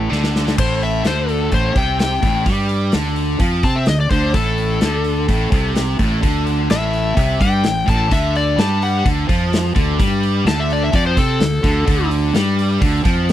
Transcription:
0.10 0.55 D2 medium
0.10 0.57 D3 loud
0.10 snare medium
0.24 snare medium
0.36 snare medium
0.48 snare medium
0.57 1.02 A1 medium
0.57 1.04 A2 loud
0.57 0.81 C5 medium
0.57 kick loud
0.57 crash loud
0.82 1.05 E5 medium
0.82 open hi-hat medium
1.05 1.49 D2 medium
1.05 1.51 D3 medium
1.05 1.30 C5 medium
1.05 snare medium
1.05 open hi-hat medium
1.29 1.52 A4 medium
1.29 open hi-hat medium
1.52 1.74 A1 medium
1.52 1.75 A2 medium
1.52 1.76 C5 medium
1.52 kick medium
1.52 open hi-hat medium
1.75 2.19 C2 medium
1.75 2.21 C3 medium
1.75 1.99 G5 medium
1.75 kick loud
1.75 open hi-hat medium
1.99 2.45 G5 medium
1.99 snare loud
1.99 open hi-hat medium
2.22 2.45 A1 medium
2.22 2.45 A2 loud
2.22 kick loud
2.22 open hi-hat medium
2.45 2.90 G2 medium
2.45 2.92 G3 loud
2.45 kick loud
2.45 open hi-hat medium
2.69 open hi-hat medium
2.92 3.37 D2 medium
2.92 3.40 D3 medium
2.92 snare loud
2.92 open hi-hat medium
3.16 open hi-hat medium
3.39 3.62 F2 medium
3.39 3.63 F3 loud
3.39 kick loud
3.39 open hi-hat medium
3.63 3.85 C3 medium
3.63 3.87 C4 loud
3.63 3.75 A5 loud
3.63 kick loud
3.63 open hi-hat medium
3.76 3.87 E5 medium
3.86 4.09 D2 medium
3.86 4.06 D3 medium
3.86 3.99 D#5 medium
3.86 snare loud
3.86 open hi-hat medium
4.00 4.11 D5 medium
4.11 4.33 D2 medium
4.11 4.33 D3 loud
4.11 4.34 C5 medium
4.11 kick loud
4.11 open hi-hat medium
4.34 4.78 A1 medium
4.34 4.80 A2 loud
4.34 5.71 A4 medium
4.34 kick loud
4.34 open hi-hat medium
4.58 open hi-hat medium
4.81 5.26 D2 medium
4.81 5.27 D3 loud
4.81 snare loud
4.81 open hi-hat medium
5.04 open hi-hat medium
5.28 5.51 A1 medium
5.28 5.51 A2 loud
5.28 kick medium
5.28 open hi-hat medium
5.52 5.96 C2 medium
5.52 5.98 C3 medium
5.52 kick loud
5.52 open hi-hat medium
5.76 snare loud
5.76 open hi-hat medium
5.99 6.21 A1 medium
5.99 6.22 A2 medium
5.99 kick loud
5.99 open hi-hat medium
6.22 6.67 D2 medium
6.22 6.69 D3 medium
6.22 kick loud
6.22 open hi-hat medium
6.47 open hi-hat medium
6.70 7.14 A1 medium
6.70 7.16 A2 loud
6.70 7.39 E5 medium
6.70 snare loud
6.70 open hi-hat medium
6.93 open hi-hat medium
7.16 7.39 C2 medium
7.16 7.39 C3 loud
7.16 kick loud
7.16 open hi-hat medium
7.39 7.63 G2 medium
7.39 7.63 G3 medium
7.39 7.87 G5 medium
7.39 kick loud
7.39 open hi-hat medium
7.63 7.86 A1 medium
7.63 7.82 A2 medium
7.63 snare loud
7.63 open hi-hat medium
7.86 8.10 A1 medium
7.86 8.09 A2 loud
7.86 8.11 A5 medium
7.86 kick loud
7.86 open hi-hat medium
8.10 8.55 D2 medium
8.10 8.57 D3 medium
8.10 8.34 E5 medium
8.10 kick loud
8.10 open hi-hat medium
8.35 8.58 D5 medium
8.35 open hi-hat medium
8.56 9.02 G2 medium
8.56 9.04 G3 loud
8.56 8.81 A5 medium
8.56 snare loud
8.56 open hi-hat medium
8.82 9.05 F#5 medium
8.82 open hi-hat medium
9.04 9.27 D2 medium
9.04 9.27 D3 medium
9.04 kick loud
9.04 open hi-hat medium
9.28 9.73 F2 medium
9.28 9.74 F3 medium
9.28 kick loud
9.28 open hi-hat medium
9.53 snare loud
9.53 open hi-hat medium
9.75 9.98 D2 medium
9.75 9.98 D3 loud
9.75 kick loud
9.75 open hi-hat medium
9.99 10.43 G2 medium
9.99 10.45 G3 loud
9.99 kick loud
9.99 open hi-hat medium
10.23 open hi-hat medium
10.45 10.89 D2 medium
10.45 10.91 D3 loud
10.45 10.59 A5 medium
10.45 snare loud
10.45 open hi-hat medium
10.60 10.70 E5 medium
10.70 10.83 D5 medium
10.70 open hi-hat soft
10.84 10.94 E5 medium
10.92 11.15 F2 medium
10.92 11.15 F3 loud
10.92 11.06 D5 medium
10.92 kick loud
10.92 open hi-hat medium
11.07 11.17 C5 medium
11.16 11.39 C3 medium
11.16 11.39 C4 medium
11.16 12.09 A4 medium
11.16 kick loud
11.16 open hi-hat medium
11.39 11.62 D2 medium
11.39 11.59 D3 medium
11.39 snare loud
11.39 open hi-hat medium
11.63 11.86 D2 medium
11.63 11.85 D3 loud
11.63 kick loud
11.63 open hi-hat medium
11.86 12.31 D2 medium
11.86 12.33 D3 loud
11.86 kick loud
11.86 open hi-hat medium
12.11 open hi-hat medium
12.34 12.78 G2 medium
12.34 12.81 G3 loud
12.34 snare loud
12.34 open hi-hat medium
12.59 open hi-hat medium
12.81 13.04 D2 medium
12.81 13.04 D3 loud
12.81 kick loud
12.81 open hi-hat medium
13.04 13.32 F2 medium
13.04 13.32 F3 medium
13.04 kick loud
13.04 open hi-hat medium
13.29 open hi-hat medium

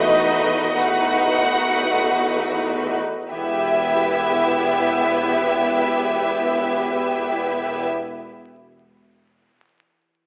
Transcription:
0.00 2.98 E2 soft
0.00 3.27 E3 soft
0.00 0.74 A3 soft
0.00 3.36 B3 soft
0.00 0.75 D#4 soft
0.00 3.32 D#4 soft
0.00 0.76 F#4 soft
0.00 3.34 A4 soft
0.00 0.75 B4 soft
0.00 0.77 D#5 medium
0.76 2.98 A3 soft
0.76 2.97 D#4 soft
0.76 2.98 F#4 soft
0.76 2.98 B4 soft
0.76 2.65 F#5 medium
3.30 7.85 E1 soft
3.30 7.85 E2 soft
3.30 8.06 E3 soft
3.30 7.85 B3 soft
3.30 7.85 E4 soft
3.30 7.85 G4 soft
3.30 7.85 B4 soft
3.30 7.86 E5 soft
3.37 8.13 B3 soft
3.44 8.19 E4 soft
3.51 8.26 G4 soft
3.58 8.34 E5 soft

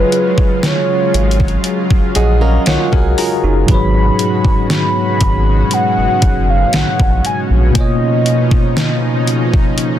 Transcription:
0.00 7.71 C#3 medium
0.00 3.62 F#3 medium
0.00 3.64 F#3 medium
0.00 3.64 G#3 medium
0.00 3.64 C#4 medium
0.00 2.11 F4 medium
0.00 3.64 F4 medium
0.00 2.13 G#4 medium
0.00 0.64 B4 loud
0.00 2.15 C#5 medium
0.12 closed hi-hat medium
0.38 kick medium
0.63 1.62 C#5 medium
0.63 snare loud
0.63 closed hi-hat medium
1.14 1.56 G#1 medium
1.14 closed hi-hat medium
1.31 closed hi-hat medium
1.40 kick medium
1.48 closed hi-hat soft
1.64 closed hi-hat medium
1.91 2.01 A#1 soft
1.91 kick medium
2.15 2.58 A#1 loud
2.15 2.40 G#4 medium
2.15 2.41 D#5 medium
2.15 2.40 F#5 medium
2.15 closed hi-hat medium
2.41 2.66 C#4 medium
2.41 2.65 A#4 medium
2.41 2.66 D#5 medium
2.41 2.65 F5 medium
2.66 2.77 B1 soft
2.66 2.91 F4 medium
2.66 2.91 A#4 medium
2.66 2.91 C#5 medium
2.66 2.91 F#5 medium
2.66 snare loud
2.66 closed hi-hat medium
2.92 3.14 B1 medium
2.92 3.17 F#4 medium
2.92 3.65 G#4 medium
2.92 3.17 A#4 medium
2.92 3.16 G#5 medium
2.92 kick medium
3.18 3.42 F4 medium
3.18 3.42 G#4 medium
3.18 3.65 A#5 medium
3.18 open hi-hat medium
3.43 3.64 F#1 medium
3.43 3.92 D#4 medium
3.43 3.92 F#4 medium
3.64 7.69 G#2 medium
3.64 7.70 F#3 medium
3.68 4.11 G#1 loud
3.68 9.99 B2 medium
3.68 7.71 G#3 medium
3.68 9.99 C#4 medium
3.68 7.71 F#4 medium
3.68 7.71 G#4 medium
3.68 7.73 B4 medium
3.68 4.67 B5 loud
3.68 kick loud
3.68 closed hi-hat medium
3.74 7.74 C#5 medium
4.19 closed hi-hat medium
4.45 kick medium
4.70 5.75 B5 loud
4.70 snare loud
4.70 closed hi-hat medium
5.21 5.63 G#1 medium
5.21 kick medium
5.21 closed hi-hat medium
5.71 6.51 F#5 loud
5.71 closed hi-hat medium
5.97 6.08 F#1 soft
6.22 6.65 F#1 loud
6.22 kick medium
6.22 closed hi-hat medium
6.50 6.77 F5 loud
6.73 6.84 A#1 soft
6.73 7.25 F#5 loud
6.73 snare loud
6.73 closed hi-hat medium
7.00 7.20 A#1 medium
7.00 kick loud
7.25 7.40 G#5 medium
7.25 closed hi-hat medium
7.50 7.71 A#1 medium
7.71 9.99 B2 medium
7.71 9.99 A#3 medium
7.75 9.99 C#3 medium
7.75 9.99 F3 medium
7.75 9.99 D#4 medium
7.75 9.99 F4 medium
7.75 9.99 C#5 medium
7.75 8.74 D#5 medium
7.75 kick loud
7.75 closed hi-hat medium
7.81 9.99 D#5 medium
8.26 closed hi-hat medium
8.51 kick medium
8.77 snare loud
8.77 closed hi-hat medium
9.27 closed hi-hat medium
9.54 kick medium
9.78 closed hi-hat medium

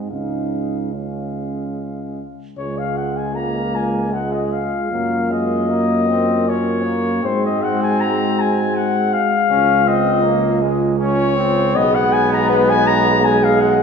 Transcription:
0.00 0.12 G#2 medium
0.00 0.10 G#3 soft
0.09 2.25 C#2 soft
0.09 0.93 G#3 soft
0.09 0.93 C#4 soft
0.09 0.93 D#4 medium
0.09 0.92 F5 soft
0.93 2.23 G#3 soft
0.93 2.22 C#4 soft
0.93 1.77 C#4 medium
0.93 2.22 F5 soft
2.58 4.87 C#2 medium
2.58 4.87 G#3 medium
2.58 3.37 G#3 medium
2.58 7.20 F4 medium
2.58 2.80 C#5 medium
2.78 2.98 F5 medium
2.97 3.18 F#5 medium
3.17 3.37 G#5 medium
3.36 4.15 A#3 medium
3.36 3.77 A#5 medium
3.75 4.15 G#5 medium
4.14 4.90 G#3 medium
4.14 4.34 F#5 medium
4.33 4.54 D#5 medium
4.53 5.33 F5 medium
4.91 7.20 F#2 medium
4.91 5.32 F#3 medium
4.91 7.24 A#3 medium
5.30 5.71 G#3 medium
5.30 6.51 D#5 loud
5.70 6.10 A#3 medium
6.08 6.49 C4 medium
6.48 6.87 C#4 medium
6.48 7.27 C#5 loud
6.85 7.23 A#3 medium
7.23 9.19 G#2 medium
7.23 11.48 G#3 medium
7.23 9.19 C4 medium
7.23 9.33 F#4 medium
7.23 7.43 C5 loud
7.46 7.65 D#5 medium
7.64 7.82 F#5 loud
7.83 8.02 G#5 loud
8.01 8.42 A#5 loud
8.40 8.78 G#5 medium
8.76 9.15 F#5 loud
9.13 9.89 F5 loud
9.50 11.77 C#2 medium
9.50 9.87 C#4 medium
9.50 11.72 F4 medium
9.86 10.25 C4 medium
9.86 10.73 D#5 loud
10.24 10.63 A#3 medium
10.62 10.99 G#3 medium
10.99 11.36 C#4 medium
10.99 11.77 C#5 loud
11.36 11.77 C4 medium
11.75 13.83 B1 loud
11.75 13.83 G#3 medium
11.75 13.24 B3 loud
11.75 13.83 G#4 loud
11.75 11.96 D#5 loud
11.95 12.14 F#5 loud
12.13 12.31 G#5 loud
12.33 12.49 A#5 loud
12.49 12.71 B4 loud
12.70 12.88 G#5 loud
12.87 13.26 A#5 loud
13.23 13.83 G#3 loud
13.23 13.45 G#5 loud
13.44 13.62 F5 loud
13.61 13.83 F#5 loud

